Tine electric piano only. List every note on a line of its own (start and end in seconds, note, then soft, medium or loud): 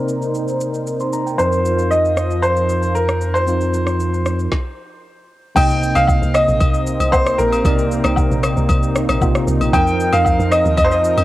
0.00 1.34 C3 medium
0.00 1.35 A#3 medium
0.00 1.35 D#4 medium
0.00 1.36 D5 medium
1.01 1.12 C6 medium
1.13 1.26 A#5 medium
1.27 1.51 G5 medium
1.38 3.43 F3 medium
1.38 3.43 C4 medium
1.38 3.44 D#4 medium
1.38 3.44 A#4 medium
3.46 4.49 F3 medium
3.46 4.49 C4 medium
3.46 4.50 D#4 medium
3.46 4.50 F4 medium
5.55 7.60 C3 medium
5.55 7.61 A#3 medium
5.55 7.61 D#4 medium
5.55 7.62 D#5 medium
7.64 9.18 C3 medium
7.64 9.18 A#3 medium
7.64 9.19 D#4 medium
7.64 9.19 D5 medium
9.21 9.73 C3 medium
9.21 9.73 A#3 medium
9.21 9.73 D#4 medium
9.21 9.74 F4 medium
9.72 11.24 F3 medium
9.72 11.24 C4 medium
9.72 11.24 D#4 medium
9.72 11.24 A#4 medium